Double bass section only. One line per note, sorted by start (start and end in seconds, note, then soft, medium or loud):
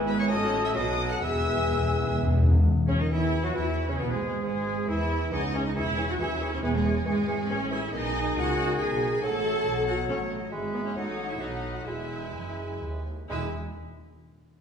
0.00 0.28 G#1 medium
0.30 0.76 A1 medium
0.75 1.22 B1 medium
1.22 2.41 E1 medium
2.87 2.92 C#2 medium
3.10 3.43 E2 medium
3.54 3.88 E2 medium
4.00 4.11 B1 medium
4.10 4.42 G#1 medium
4.43 4.87 G#1 medium
4.88 5.31 E2 medium
5.32 5.73 C#2 medium
5.76 6.20 E1 medium
6.20 6.63 D#2 medium
6.63 7.05 E1 medium
7.06 7.48 G#1 medium
7.49 7.92 A1 medium
7.93 8.35 B1 medium
8.36 8.78 C#2 medium
8.79 9.21 B1 medium
9.22 9.64 A1 medium
9.66 10.08 B1 medium
10.08 10.52 A1 medium
10.52 10.95 G#1 medium
10.96 11.39 A1 medium
11.40 11.85 B1 soft
11.86 12.33 E1 soft
12.34 12.83 F#1 soft
12.82 13.29 D#2 soft
13.30 13.56 E1 medium